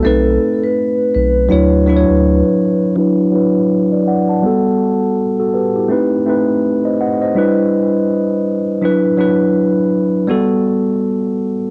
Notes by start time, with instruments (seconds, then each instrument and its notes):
0.03 sub bass B1, tine electric piano A3 C4 D#4 B4, vibraphone A4
0.63 vibraphone B4
1.14 sub bass B1, vibraphone B4
1.49 sub bass D2, tine electric piano F#3 D4 E4 C#5
1.87 tine electric piano F#3 D4 E4 B4
1.97 tine electric piano C#5
2.10 sub bass D2
2.96 tine electric piano F#3 D4 E4 B4
3.31 tine electric piano F#3 D4 E4 B4
3.92 tine electric piano B4 D5
4.07 tine electric piano D5 F#5
4.29 tine electric piano F#5 A5
4.42 tine electric piano G3 B3 F#4 A4
5.39 tine electric piano F#4 A4
5.54 tine electric piano G4 B4
5.76 tine electric piano E4 G4
5.88 tine electric piano A3 C4 D#4 B4
6.26 tine electric piano A3 C4 D#4 B4
6.85 tine electric piano C5 D#5
7.01 tine electric piano D#5 F#5
7.21 tine electric piano C5 D#5
7.35 tine electric piano G3 D4 E4 B4
8.82 tine electric piano F#3 D4 E4 B4
9.18 tine electric piano F#3 D4 E4 B4
10.28 tine electric piano G3 B3 F#4 A4